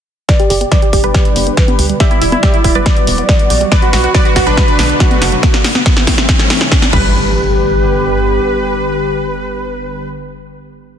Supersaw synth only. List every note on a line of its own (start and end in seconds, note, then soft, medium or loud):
0.29 0.37 B4 medium
0.29 0.37 D5 loud
0.39 0.48 G4 medium
0.50 0.59 G4 medium
0.61 0.70 G4 medium
0.72 0.80 B4 medium
0.72 0.80 D5 medium
0.82 0.91 G4 medium
0.93 1.02 G4 medium
1.04 1.92 G4 medium
1.04 1.92 B4 loud
2.00 2.09 G4 medium
2.00 2.09 E5 loud
2.11 2.20 E4 medium
2.22 2.30 E4 medium
2.32 2.41 E4 medium
2.43 2.52 G4 medium
2.43 2.52 E5 medium
2.54 2.63 E4 medium
2.64 2.73 E4 medium
2.75 3.63 B4 medium
2.75 3.63 D5 loud
3.72 3.80 B4 medium
3.72 3.80 D5 loud
3.83 3.91 F#4 medium
3.93 4.02 F#4 medium
4.04 4.13 F#4 medium
4.15 4.23 B4 medium
4.15 4.23 D5 medium
4.26 4.34 F#4 medium
4.36 4.45 F#4 medium
4.47 5.35 D4 medium
4.47 5.35 B4 loud
6.93 10.08 B4 loud